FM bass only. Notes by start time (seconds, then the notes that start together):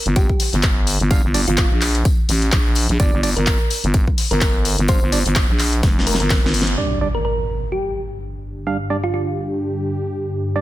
0.06 G1
0.53 G1
1.00 G1
1.24 G1
1.48 G1
1.71 A#1
2.29 A1
2.52 A#1
2.89 A#1
3.00 G1
3.13 G1
3.37 G1
3.84 G1
4.31 G1
4.78 G1
5.02 G1
5.26 G1
5.49 A#1
5.83 F1
6.20 G1
6.44 G1